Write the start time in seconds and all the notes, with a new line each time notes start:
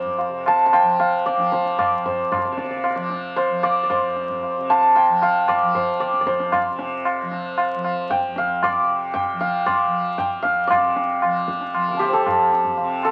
Already playing: F2 C3 F3 C5 D5 F5
0.06 tabla ge
0.18 tabla tin
0.27 C3
0.46 A5, tabla na
0.66 A5
0.73 G5, tabla na
0.82 F3
1.00 F5, tabla na
1.26 D5, tabla te
1.36 F3, tabla te
1.52 C5, tabla ke
1.66 tabla te
1.79 D5, tabla na, tabla ge
1.89 F2
2.06 C5, tabla ge
2.32 D5, tabla na, tabla ge
2.39 C3 D5
2.45 D5
2.52 D5
2.58 D5, tabla te
2.64 D5
2.71 D5
2.77 D5
2.84 D5, tabla na
2.90 D5
2.95 F3 D5
3.10 tabla te
3.36 C5, tabla na
3.50 F3
3.63 D5, tabla na
3.83 D5
3.90 C5, tabla na, tabla ge
4.02 F2
4.16 tabla te
4.30 tabla ge
4.43 tabla tin
4.56 C3
4.70 A5, tabla na
4.95 G5, tabla na
5.09 F3
5.22 F5, tabla na
5.48 D5, tabla na, tabla ge
5.62 F3
5.74 C5, tabla ge
6.00 D5, tabla te
6.13 F2, tabla te
6.21 D5
6.26 C5, tabla ke
6.40 tabla te
6.52 D5, tabla na, tabla ge
6.69 C3
6.79 tabla te
7.05 tabla na
7.22 F3
7.32 tabla te
7.58 tabla na
7.75 F3
7.84 tabla na
8.10 G5, tabla tin, tabla ge
8.28 F2
8.36 F5, tabla te
8.63 D5, tabla na, tabla ge
8.80 C3
9.14 G5, tabla tin, tabla ge
9.33 F3
9.41 F5, tabla te
9.66 D5, tabla na, tabla ge
9.87 F3
10.18 G5, tabla tin, tabla ge
10.39 F2 F5
10.45 tabla te
10.67 C3 D5, tabla na, tabla ge
10.96 tabla te
11.22 F3, tabla na
11.48 tabla ke
11.61 tabla te
11.74 F3, tabla na
11.89 D6 F6
11.94 A5 C6
11.99 G4 F5 G5, tabla na
12.05 C5 D5
12.13 A4
12.26 F2, tabla na, tabla ge
12.52 tabla te
12.65 tabla ge
12.77 C3, tabla tin
13.03 A4, tabla na